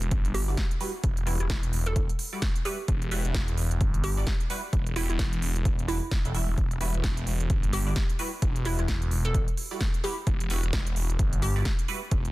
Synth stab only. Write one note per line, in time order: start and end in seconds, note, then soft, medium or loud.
0.00 0.45 G3 medium
0.00 0.45 E4 medium
0.00 0.45 F#4 medium
0.00 0.45 B4 loud
0.48 0.62 G3 medium
0.48 0.62 E4 medium
0.48 0.62 F#4 medium
0.48 0.62 D5 medium
0.81 0.92 G3 loud
0.81 0.92 E4 medium
0.81 0.92 F#4 medium
0.81 0.92 B4 loud
1.27 2.29 G3 medium
1.27 2.29 E4 medium
1.27 2.29 F#4 medium
1.27 2.29 B4 loud
2.33 2.46 G3 medium
2.33 2.46 E4 medium
2.33 2.46 F#4 medium
2.33 2.46 D5 medium
2.65 2.76 G3 loud
2.65 2.76 E4 medium
2.65 2.76 F#4 medium
2.65 2.76 B4 loud
3.12 4.14 G3 loud
3.12 4.14 E4 medium
3.12 4.14 F#4 medium
3.12 4.14 B4 loud
4.17 4.31 G3 medium
4.17 4.31 E4 medium
4.17 4.31 F#4 medium
4.17 4.31 D5 medium
4.50 4.61 G3 loud
4.50 4.61 E4 medium
4.50 4.61 F#4 medium
4.50 4.61 B4 loud
4.96 5.86 G3 loud
4.96 5.86 E4 medium
4.96 5.86 F#4 medium
4.96 5.86 B4 loud
5.88 5.99 G3 medium
5.88 5.99 E4 medium
5.88 5.99 F#4 medium
5.88 5.99 B4 loud
6.25 6.33 G3 medium
6.25 6.33 E4 medium
6.25 6.33 F#4 medium
6.25 6.33 A4 medium
6.34 6.78 G3 medium
6.34 6.78 E4 medium
6.34 6.78 F#4 medium
6.34 6.78 E5 medium
6.81 7.83 G3 loud
6.81 7.83 E4 medium
6.81 7.83 F#4 medium
6.81 7.83 B4 loud
7.87 8.00 G3 medium
7.87 8.00 E4 medium
7.87 8.00 F#4 medium
7.87 8.00 D5 medium
8.19 8.30 G3 loud
8.19 8.30 E4 medium
8.19 8.30 F#4 medium
8.19 8.30 B4 loud
8.65 9.68 G3 medium
8.65 9.68 E4 medium
8.65 9.68 F#4 medium
8.65 9.68 B4 loud
9.71 9.85 G3 medium
9.71 9.85 E4 medium
9.71 9.85 F#4 medium
9.71 9.85 D5 medium
10.04 10.15 G3 loud
10.04 10.15 E4 medium
10.04 10.15 F#4 loud
10.04 10.15 B4 loud
10.50 11.52 G3 loud
10.50 11.52 E4 medium
10.50 11.52 F#4 medium
10.50 11.53 B4 loud
11.56 11.70 G3 medium
11.56 11.70 E4 medium
11.56 11.70 F#4 medium
11.56 11.70 D5 medium
11.88 11.99 G3 loud
11.88 11.99 E4 medium
11.88 12.00 F#4 medium
11.88 11.99 B4 loud